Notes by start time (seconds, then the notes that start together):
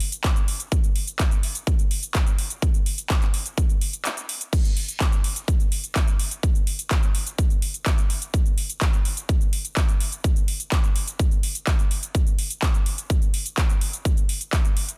0.00 open hi-hat
0.12 closed hi-hat, shaker
0.24 kick, clap, closed hi-hat, shaker
0.36 closed hi-hat, shaker
0.48 open hi-hat
0.60 closed hi-hat, shaker
0.72 kick, closed hi-hat, shaker
0.84 closed hi-hat, shaker
0.96 open hi-hat
1.08 closed hi-hat, shaker
1.19 kick, clap, closed hi-hat, shaker
1.31 closed hi-hat, shaker
1.43 open hi-hat
1.55 closed hi-hat, shaker
1.67 kick, closed hi-hat, shaker
1.79 closed hi-hat, shaker
1.91 open hi-hat
2.03 closed hi-hat, shaker
2.15 kick, clap, closed hi-hat, shaker
2.27 closed hi-hat, shaker
2.39 open hi-hat
2.50 closed hi-hat, shaker
2.62 kick, closed hi-hat, shaker
2.74 closed hi-hat, shaker
2.86 open hi-hat
2.98 closed hi-hat, shaker
3.10 kick, clap, closed hi-hat, shaker
3.22 clap, closed hi-hat, shaker
3.34 open hi-hat
3.46 closed hi-hat, shaker
3.58 kick, closed hi-hat, shaker
3.70 closed hi-hat, shaker
3.81 open hi-hat
3.93 closed hi-hat, shaker
4.05 clap, closed hi-hat, shaker
4.17 closed hi-hat, shaker
4.29 open hi-hat
4.41 closed hi-hat, shaker
4.53 kick, closed hi-hat, crash, shaker
4.65 closed hi-hat, shaker
4.77 open hi-hat
4.88 closed hi-hat, shaker
5.00 kick, clap, closed hi-hat, shaker
5.12 closed hi-hat, shaker
5.24 open hi-hat
5.36 closed hi-hat, shaker
5.48 kick, closed hi-hat, shaker
5.60 closed hi-hat, shaker
5.72 open hi-hat
5.84 closed hi-hat, shaker
5.96 kick, clap, closed hi-hat, shaker
6.08 closed hi-hat, shaker
6.19 open hi-hat
6.31 closed hi-hat, shaker
6.43 kick, closed hi-hat, shaker
6.55 closed hi-hat, shaker
6.67 open hi-hat
6.79 closed hi-hat, shaker
6.91 kick, clap, closed hi-hat, shaker
7.03 closed hi-hat, shaker
7.15 open hi-hat
7.27 closed hi-hat, shaker
7.38 kick, closed hi-hat, shaker
7.50 closed hi-hat, shaker
7.62 open hi-hat
7.74 closed hi-hat, shaker
7.86 kick, clap, closed hi-hat, shaker
7.98 closed hi-hat, shaker
8.10 open hi-hat
8.22 closed hi-hat, shaker
8.34 kick, closed hi-hat, shaker
8.46 closed hi-hat, shaker
8.58 open hi-hat
8.70 closed hi-hat, shaker
8.81 kick, clap, closed hi-hat, shaker
8.93 closed hi-hat, shaker
9.05 open hi-hat
9.17 closed hi-hat, shaker
9.29 kick, closed hi-hat, shaker
9.41 closed hi-hat, shaker
9.53 open hi-hat
9.65 closed hi-hat, shaker
9.77 kick, clap, closed hi-hat, shaker
9.89 closed hi-hat, shaker
10.00 open hi-hat
10.12 closed hi-hat, shaker
10.24 kick, closed hi-hat, shaker
10.36 closed hi-hat, shaker
10.48 open hi-hat
10.60 closed hi-hat, shaker
10.72 kick, clap, closed hi-hat, shaker
10.84 closed hi-hat, shaker
10.96 open hi-hat
11.08 closed hi-hat, shaker
11.19 kick, closed hi-hat, shaker
11.31 closed hi-hat, shaker
11.43 open hi-hat
11.55 closed hi-hat, shaker
11.67 kick, clap, closed hi-hat, shaker
11.79 closed hi-hat, shaker
11.91 open hi-hat
12.03 closed hi-hat, shaker
12.15 kick, closed hi-hat, shaker
12.27 closed hi-hat, shaker
12.38 open hi-hat
12.50 closed hi-hat, shaker
12.62 kick, clap, closed hi-hat, shaker
12.74 closed hi-hat, shaker
12.86 open hi-hat
12.98 closed hi-hat, shaker
13.10 kick, closed hi-hat, shaker
13.22 closed hi-hat, shaker
13.34 open hi-hat
13.46 closed hi-hat, shaker
13.58 kick, clap, closed hi-hat, shaker
13.69 closed hi-hat, shaker
13.81 open hi-hat
13.93 closed hi-hat, shaker
14.05 kick, closed hi-hat, shaker
14.17 closed hi-hat, shaker
14.29 open hi-hat
14.41 closed hi-hat, shaker
14.53 kick, clap, closed hi-hat, shaker
14.65 closed hi-hat, shaker
14.77 open hi-hat
14.89 closed hi-hat, shaker